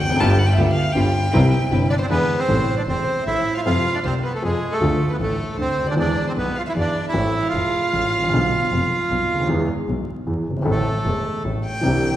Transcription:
0.00 double bass F1, violin G5
0.05 grand piano E2
0.10 grand piano F2
0.15 grand piano F#2
0.19 double bass G1, grand piano G1 G2 D3 G3 B3 F4, string section B3 F4 G4, violin A5
0.30 violin G5
0.39 violin F#5
0.46 violin G5
0.53 double bass D2, string section B3 F4, violin E5
0.57 grand piano D2 D3 G3 B3 F4, string section G4
0.73 violin F5
0.92 grand piano G1 G2 D3 G3 B3 F4, double bass G1, string section B3 F4 G4, violin G5
1.32 grand piano C2 C3 G3 B3 E4, double bass C2, string section C4 E4 B4
1.71 double bass G1, grand piano G1 G2 C3 G3 B3 E4, string section C4 E4 B4
1.90 bandoneon D4, violin D5
1.98 bandoneon C4, violin C5
2.09 double bass E2, grand piano E2 D3 E3 G#3 B3 E4, bandoneon B3, string section D4 E4 G#4, violin B4
2.37 bandoneon C4, violin C5
2.48 double bass A1, grand piano A1 A2 C3 E3 A3 E4
2.77 bandoneon D4, violin D5
2.86 double bass E1, grand piano E1 E2, bandoneon C4, violin C5
3.25 double bass A1, grand piano A1 A2, bandoneon E4, violin E5
3.55 bandoneon F4, violin F5
3.64 double bass F2, grand piano F2 C3 F3 A3 F4, bandoneon F4, violin F5
3.95 bandoneon D4, violin D5
4.04 double bass C2, grand piano C2 C3, bandoneon C4, violin C5
4.23 bandoneon B3, violin B4
4.34 bandoneon A3, violin A4
4.42 grand piano F2 F3, double bass F2, bandoneon G#3, violin G#4
4.71 bandoneon A3, violin A4
4.81 grand piano D2 D3 F3 A3 F4, double bass D2
5.09 bandoneon B3, violin B4
5.20 double bass A1, grand piano A1 A2, bandoneon A3, violin A4
5.57 grand piano D2 D3, double bass D2, bandoneon C4, violin C5
5.78 grand piano C#2, double bass D2
5.87 grand piano D2, bandoneon D4, violin D5
5.92 grand piano D#2, violin D5
5.96 grand piano E2 E3 G#3 B3 G#4, double bass E2, bandoneon D4
6.27 bandoneon C4, violin C5
6.36 grand piano B1 B2, double bass B1, bandoneon B3, violin B4
6.56 bandoneon F4, violin F5
6.66 bandoneon E4, violin E5
6.75 grand piano E2 E3, double bass E2, violin D5
6.80 bandoneon D4
7.07 bandoneon E4, violin E5
7.13 grand piano A1 A2 E3 A3 C4 A4, double bass A1
7.45 bandoneon F4, violin F5
7.53 grand piano E1 E2, double bass E1
7.93 grand piano A1 A2, double bass A1
8.13 double bass A1
8.18 grand piano G#1
8.24 grand piano A1
8.28 grand piano A#1
8.32 double bass B1, grand piano B1 B2 D3 F3 B3 F4
8.72 grand piano F1 F2, double bass F1
9.10 grand piano B1 B2, double bass B1
9.30 double bass D2
9.35 grand piano C#2
9.40 grand piano D2 D#2
9.49 grand piano E2 E3 G#3 B3 G#4, double bass E2
9.88 grand piano B1 B2, double bass B1
10.27 double bass E2, grand piano E2 E3
10.47 grand piano F#1, double bass G1
10.57 grand piano G1
10.62 grand piano G#1 A1 A2 E3 A3 C4 A4, double bass A1
10.68 bandoneon A3, violin A4
11.05 grand piano E1 E2, double bass E1
11.45 double bass A1, grand piano A1 A2
11.65 violin G5
11.81 grand piano C2 C3 E3 C4 D4, double bass C2
11.85 grand piano G4

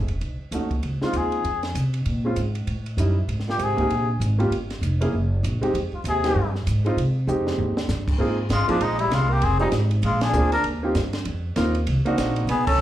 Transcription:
0.01 upright bass F#1
0.08 upright bass E1, ride
0.21 upright bass B1, ride
0.39 muted upright bass stroke
0.51 upright bass D#2, grand piano A3 C#4 D#4 F#4, hi-hat pedal, ride
0.71 kick, ride
0.83 upright bass C#2, ride
1.01 grand piano G#3 C4 D#4 F4, muted trumpet F4, muted upright bass stroke, snare
1.13 upright bass D#2, muted trumpet G#4, hi-hat pedal, ride
1.32 ride
1.44 upright bass F2, ride
1.63 snare, ride
1.75 upright bass C3, hi-hat pedal, ride
1.94 ride
2.06 upright bass A#2, ride
2.25 grand piano G#3 C4 C#4 F4
2.36 upright bass G#2, hi-hat pedal, ride
2.55 ride
2.67 upright bass A2, ride
2.86 ride
2.97 upright bass F#2, grand piano G3 C#4 D#4 E4, hi-hat pedal, ride
3.28 upright bass G#2, ride
3.40 snare
3.47 tenor saxophone A#2, muted trumpet G4, snare
3.58 upright bass G#1, tenor saxophone C3, hi-hat pedal, ride
3.63 muted trumpet G#4
3.77 grand piano A#3 C4 D#4 G4, kick, ride
3.90 upright bass A#1, ride
4.20 upright bass G#1, hi-hat pedal, ride
4.38 grand piano A#3 C#4 F4 G4, ride
4.50 upright bass G1, ride
4.70 snare, ride
4.82 upright bass F1, hi-hat pedal, ride
5.01 grand piano A#3 C#4 E4 G#4, ride
5.12 upright bass F#1
5.43 upright bass A#1, hi-hat pedal, ride
5.61 grand piano G#3 C4 D#4 G4, muted upright bass stroke, ride
5.74 upright bass F2, ride
5.92 tenor saxophone G#2, muted trumpet F4, muted upright bass stroke
6.04 upright bass D#2, tenor saxophone C3, hi-hat pedal, ride
6.08 muted trumpet G#4
6.24 grand piano G#3 C4 D#4 G4, snare, ride
6.35 upright bass G2
6.55 snare
6.67 upright bass G#2, hi-hat pedal, ride
6.85 grand piano G#3 C4 D#4 F4, ride
6.97 upright bass C3, ride
7.27 upright bass F2, grand piano G#3 C4 D#4 G4, hi-hat pedal
7.47 snare
7.58 upright bass D#2, floor tom
7.77 snare
7.88 upright bass G2, snare, hi-hat pedal
8.08 kick, crash
8.18 upright bass G#2, grand piano A#3 C4 D#4 F4 G#4
8.50 upright bass G#1, tenor saxophone G#3, muted trumpet F4, snare, hi-hat pedal, ride
8.68 tenor saxophone F3, grand piano A#3 C4 D#4 F4 G#4, muted trumpet D4, muted upright bass stroke, ride
8.80 upright bass A#1, tenor saxophone G#3, muted trumpet D#4, ride
8.98 tenor saxophone G3, muted trumpet E4, ride
9.11 upright bass C2, tenor saxophone G#3, muted trumpet F4, snare, hi-hat pedal, ride
9.29 tenor saxophone A#3, muted trumpet G4
9.42 upright bass F1, tenor saxophone C4, muted trumpet G#4, ride
9.59 tenor saxophone G3, grand piano G#3 C4 D#4 F4 G4, muted trumpet D#4
9.72 upright bass G#1, snare, hi-hat pedal, ride
9.91 ride
10.03 upright bass A#1, tenor saxophone G#3, muted trumpet F4, ride
10.21 tenor saxophone D4, muted trumpet G#4, snare, ride
10.33 upright bass D2, grand piano A#3 C4 D4 F4 G#4, hi-hat pedal
10.52 tenor saxophone D4, muted trumpet A#4, ride
10.63 upright bass D#2, ride
10.83 grand piano A#3 C4 D#4 F4 G4
10.95 upright bass G2, snare, hi-hat pedal, ride
11.13 snare, ride
11.25 upright bass F2, ride
11.56 upright bass D#2, grand piano A#3 C4 D#4 F4 A#4, snare, hi-hat pedal, ride
11.75 ride
11.87 upright bass C2, ride
12.05 grand piano A#3 C4 D4 D#4 F#4, ride
12.18 upright bass A#1, snare, hi-hat pedal, ride
12.36 ride
12.47 upright bass B1, tenor saxophone B3, muted trumpet G#4, ride
12.67 tenor saxophone C#4, muted trumpet A4, kick, crash

